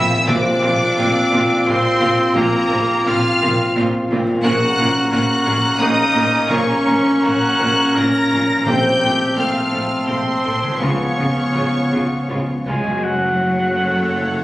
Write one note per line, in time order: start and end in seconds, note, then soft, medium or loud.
0.00 0.25 F3 medium
0.00 0.24 C4 medium
0.00 0.25 C4 medium
0.00 0.30 E4 loud
0.00 0.26 E5 loud
0.00 0.24 F5 medium
0.00 0.26 E6 loud
0.10 4.00 A#2 medium
0.15 4.05 A#3 medium
0.19 4.09 F4 medium
0.23 0.35 A#2 loud
0.23 0.35 C4 medium
0.23 4.13 C5 medium
0.28 0.36 A#1 medium
0.28 1.28 A#2 loud
0.28 4.14 C4 loud
0.28 4.41 C4 medium
0.28 1.68 D4 loud
0.28 0.36 F4 medium
0.28 4.42 F4 medium
0.28 1.67 D5 loud
0.28 4.14 F5 medium
0.28 1.67 D6 loud
0.61 0.71 A#1 medium
0.61 0.71 A#2 medium
0.61 0.69 C4 medium
0.61 0.69 F4 medium
0.96 1.05 A#1 medium
0.96 1.06 A#2 medium
0.96 1.05 C4 medium
0.96 1.04 F4 medium
1.32 1.40 A#1 medium
1.32 1.40 A#2 medium
1.32 1.41 C4 medium
1.32 1.40 F4 medium
1.66 1.74 A#1 loud
1.66 1.74 A#2 loud
1.66 2.35 C4 loud
1.66 1.75 C4 medium
1.66 1.75 F4 medium
1.66 2.35 C5 loud
1.66 2.36 C6 loud
2.00 2.08 A#1 medium
2.00 2.08 A#2 loud
2.00 2.09 C4 medium
2.00 2.08 F4 medium
2.35 2.44 A#1 loud
2.35 2.43 A#2 loud
2.35 3.09 A#3 loud
2.35 2.43 C4 medium
2.35 2.43 F4 medium
2.35 3.08 A#4 loud
2.35 3.06 A#5 loud
2.70 2.79 A#1 loud
2.70 2.78 A#2 medium
2.70 2.78 C4 medium
2.70 2.79 F4 medium
3.06 3.16 A#1 medium
3.06 3.14 A#2 medium
3.06 3.15 C4 medium
3.06 3.15 F4 medium
3.06 3.77 F4 loud
3.06 3.77 F5 loud
3.06 3.77 F6 loud
3.41 3.51 A#1 medium
3.41 3.49 A#2 loud
3.41 3.50 C4 medium
3.41 3.50 F4 medium
3.76 3.86 A#1 medium
3.76 3.84 A#2 loud
3.76 3.84 C4 medium
3.76 3.84 F4 medium
4.09 4.20 A#1 loud
4.09 4.17 A#2 loud
4.09 4.19 C4 medium
4.09 4.20 F4 medium
4.27 8.17 A#2 medium
4.31 8.21 A#3 medium
4.36 8.26 C#4 medium
4.40 4.51 A#2 loud
4.40 4.52 A#4 loud
4.40 8.30 C#5 medium
4.40 8.62 A#5 loud
4.45 4.54 A#1 loud
4.45 8.67 A#3 loud
4.45 4.53 C#4 loud
4.45 8.67 C#4 loud
4.45 8.63 C#4 loud
4.45 5.09 F#4 loud
4.45 5.09 F#5 loud
4.45 5.09 F#6 loud
4.77 4.87 A#1 loud
4.77 4.86 A#2 loud
4.77 4.85 C#4 medium
4.77 4.85 A#4 medium
5.11 5.21 A#1 medium
5.11 5.20 A#2 loud
5.11 5.19 C#4 medium
5.11 5.83 F#4 loud
5.11 5.19 A#4 medium
5.11 5.79 F#5 loud
5.11 5.79 F#6 loud
5.45 5.55 A#1 medium
5.45 5.53 A#2 loud
5.45 5.53 C#4 medium
5.45 5.53 A#4 medium
5.79 5.88 A#1 loud
5.79 5.88 A#2 loud
5.79 5.87 C#4 medium
5.79 6.48 D#4 loud
5.79 5.88 A#4 medium
5.79 6.50 D#5 loud
5.79 6.50 D#6 loud
6.13 6.24 A#1 loud
6.13 6.22 A#2 medium
6.13 6.21 C#4 medium
6.13 6.21 A#4 medium
6.47 6.57 A#2 loud
6.47 6.55 C#4 medium
6.47 7.25 C#4 medium
6.47 6.55 A#4 medium
6.47 7.24 C#5 loud
6.51 6.59 A#1 loud
6.51 7.25 C#6 loud
6.85 6.95 A#1 loud
6.85 6.95 A#2 medium
6.85 6.93 C#4 medium
6.85 6.93 A#4 medium
7.22 7.32 A#1 medium
7.22 7.33 A#2 medium
7.22 7.31 C#4 medium
7.22 7.96 F#4 loud
7.22 7.30 A#4 medium
7.22 7.95 F#5 loud
7.22 7.97 F#6 loud
7.59 7.68 A#1 medium
7.59 7.68 A#2 medium
7.59 7.67 C#4 medium
7.59 7.67 A#4 medium
7.95 8.04 A#1 medium
7.95 8.04 A#2 medium
7.95 8.03 C#4 medium
7.95 8.66 A#4 loud
7.95 8.04 A#4 medium
7.95 8.67 A#5 loud
7.95 8.67 A#6 loud
8.31 8.39 A#1 medium
8.31 8.40 A#2 medium
8.31 8.40 C#4 medium
8.31 8.40 A#4 medium
8.49 10.75 A#2 medium
8.53 10.77 A3 medium
8.57 10.70 F4 medium
8.62 8.74 A#1 medium
8.62 10.82 C4 medium
8.62 10.81 C5 medium
8.66 9.67 A#2 loud
8.66 8.75 A#2 medium
8.66 10.65 A3 medium
8.66 10.65 C4 medium
8.66 8.75 C4 medium
8.66 9.35 G4 loud
8.66 8.75 A4 medium
8.66 9.35 G5 loud
8.66 10.82 A5 medium
8.66 9.36 G6 loud
9.01 9.10 A#1 medium
9.01 9.10 A#2 medium
9.01 9.09 C4 medium
9.01 9.09 A4 medium
9.36 9.45 A#1 medium
9.36 9.44 A#2 medium
9.36 9.45 C4 medium
9.36 10.08 F4 medium
9.36 9.45 A4 medium
9.36 10.07 F5 medium
9.36 10.08 F6 loud
9.71 9.80 A#1 medium
9.71 9.80 A#2 medium
9.71 9.79 C4 medium
9.71 9.79 A4 medium
10.07 10.17 A#1 medium
10.07 10.15 A#2 medium
10.07 10.81 C4 medium
10.07 10.15 C4 medium
10.07 10.15 A4 medium
10.07 10.81 C5 medium
10.07 10.79 C6 loud
10.44 10.53 A#1 medium
10.44 10.52 A#2 medium
10.44 10.53 C4 medium
10.44 10.53 A4 medium
10.62 12.96 C#3 medium
10.67 12.98 G#3 medium
10.71 13.01 F4 medium
10.76 13.03 B4 medium
10.80 10.90 C#2 medium
10.80 10.90 C#3 medium
10.80 12.67 F3 medium
10.80 12.69 B3 medium
10.80 10.88 B3 medium
10.80 12.70 B3 medium
10.80 12.50 C#4 medium
10.80 10.88 F4 medium
10.80 12.66 C#5 medium
10.80 12.69 F5 medium
10.80 12.66 C#6 medium
11.18 11.26 C#2 medium
11.18 11.26 C#3 medium
11.18 11.26 B3 medium
11.18 11.26 F4 medium
11.54 11.63 C#2 medium
11.54 11.63 C#3 medium
11.54 11.62 B3 medium
11.54 11.62 F4 medium
11.92 12.00 C#2 medium
11.92 12.00 C#3 medium
11.92 12.00 B3 medium
11.92 12.01 F4 medium
12.29 12.38 C#2 medium
12.29 12.37 C#3 medium
12.29 12.37 B3 medium
12.29 12.37 F4 medium
12.66 12.74 C#2 medium
12.66 12.75 C#3 medium
12.66 13.00 G#3 medium
12.66 12.74 B3 medium
12.66 12.75 F4 medium
12.66 13.05 G#5 medium
12.84 14.44 F#2 medium
12.89 14.44 A3 soft
12.93 14.44 F#4 soft
12.98 14.44 C#4 medium
12.98 14.44 C#5 soft
13.02 14.44 F#1 medium
13.02 14.44 F#3 medium
13.02 14.44 A3 medium
13.02 14.44 A4 medium
13.02 14.44 C#5 medium
13.02 14.44 F#5 medium
13.73 14.41 A4 medium